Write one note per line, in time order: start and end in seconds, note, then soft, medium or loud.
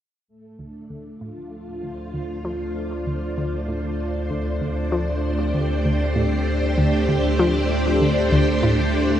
0.28 9.20 D2 medium
0.28 9.20 A3 medium
0.59 0.81 D2 medium
0.59 9.20 D4 medium
0.90 1.05 D2 medium
1.14 5.48 F4 medium
1.21 1.30 A2 medium
1.72 9.20 C5 medium
1.83 1.98 D2 medium
2.14 2.23 D2 medium
2.45 2.60 F3 medium
2.74 9.20 D5 medium
3.07 3.29 D2 medium
3.37 3.52 D2 medium
3.68 3.77 A2 medium
4.30 4.45 D2 medium
4.61 4.70 D2 medium
4.92 5.07 F3 medium
5.30 9.20 G4 medium
5.54 5.76 D2 medium
5.85 6.00 D2 medium
6.16 6.25 A2 medium
6.78 6.93 D2 medium
7.08 7.17 D2 medium
7.39 7.54 F3 medium
8.01 8.24 D2 medium
8.32 8.47 D2 medium
8.63 8.72 A2 medium